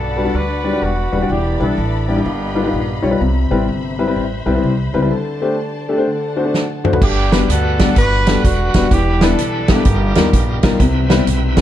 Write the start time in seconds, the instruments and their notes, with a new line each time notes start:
Already playing: upright bass B1, grand piano G2, horn section B3 D4 F#4 A4, string section D5 F#5 B5
0.17 grand piano G3 D4 F#4 B4
0.25 grand piano G3 D4 F#4 B4
0.34 upright bass D2, horn section D4 F#4 B4
0.64 grand piano G3 D4 F#4 D5
0.73 grand piano G3 D4 F#4 D5
0.82 upright bass E1, horn section B3 D4 F#4
1.12 upright bass D#1, grand piano G3 D4 F#4 B4
1.22 grand piano G3 D4 F#4 D5
1.28 upright bass E1, grand piano E3, horn section B3 D4 G4, string section D5 E5
1.60 upright bass B1, grand piano G3 D4 E4 B4, horn section D4 A4
1.78 upright bass A1
2.08 grand piano G3 D4 E4 D5, horn section A#3 B3 G4
2.16 grand piano G3 D4 E4 G4
2.24 upright bass G1, grand piano G2, string section D#5 F5
2.55 grand piano G3 D#4 F4 B4
2.64 grand piano G3 D#4 F4 B4
2.73 upright bass A#1
3.02 upright bass B1, grand piano G3 D#4 F4 C#5
3.11 grand piano G3 D#4 F4 B4
3.20 upright bass C2, grand piano C3, string section C5 E5
3.51 upright bass A1, grand piano G3 C4 E4 B4
3.68 upright bass G1
3.99 grand piano G3 C4 E4 B4
4.07 grand piano G3 C4 E4 B4
4.16 upright bass A1
4.46 upright bass B1, grand piano G3 C4 E4 B4
4.54 grand piano G3 C4 E4 B4
4.63 upright bass C2
4.94 upright bass C#2, grand piano G3 C4 E4 B4
5.02 grand piano G3 C4 E4 B4
5.11 grand piano D3, string section D5 A5
5.42 grand piano A3 D4 G4 C5
5.89 grand piano A3 D4 G4 A4
5.98 grand piano A3 D4 G4 C5
6.07 grand piano D3, string section F#5 A5
6.36 grand piano A3 D4 F#4 C5
6.45 grand piano A3 D4 F#4 C5
6.54 snare
6.84 grand piano A3 D4 F#4 C5, mid tom
6.93 grand piano A3 D4 F#4 B4, floor tom
7.01 upright bass G1, grand piano G2, tonewheel organ G3 B3 D4 A#4 F#5, horn section B3 D4 G4, kick, crash
7.08 tonewheel organ B4
7.31 grand piano G3 B3 D4 F#4 B4, snare, closed hi-hat
7.49 upright bass D2, horn section D4 F#4 A4, closed hi-hat
7.79 grand piano G3 B3 D4 F#4 D5, kick, snare, closed hi-hat
7.96 upright bass G1, horn section D4 F#4 B4, kick, closed hi-hat
8.27 grand piano G3 B3 D4 F#4 A4, snare, closed hi-hat
8.44 upright bass E1, horn section B3 D4 F#4, kick, closed hi-hat
8.74 upright bass D#1, grand piano G3 B3 D4 F#4 B4, kick, snare, closed hi-hat
8.91 upright bass E1, grand piano E3, tonewheel organ G3 B3 D4 E4 B4, horn section B3 D4 G4, kick, closed hi-hat
9.21 grand piano G3 B3 D4 E4 B4, horn section D4 A4, snare, closed hi-hat
9.38 upright bass B1, closed hi-hat
9.68 grand piano G3 B3 D4 E4 A4, horn section A#3 B3 G4, kick, snare, closed hi-hat
9.85 upright bass G1, grand piano G2, tonewheel organ B2 G3 D#4 F4 A#4, kick, closed hi-hat
10.15 upright bass D#2, grand piano G3 B3 D#4 F4 A#4, snare, closed hi-hat
10.32 upright bass A#1, tonewheel organ A#4, kick, closed hi-hat
10.63 upright bass B1, grand piano G3 B3 D#4 F4 A#4, kick, snare, closed hi-hat
10.79 upright bass C2, grand piano C3, tonewheel organ G3 B3 C4 E4 B4, kick, closed hi-hat
11.09 grand piano G3 B3 C4 E4 B4, snare, closed hi-hat
11.27 upright bass B1, closed hi-hat
11.57 grand piano G3 B3 C4 E4 A4, kick, snare, closed hi-hat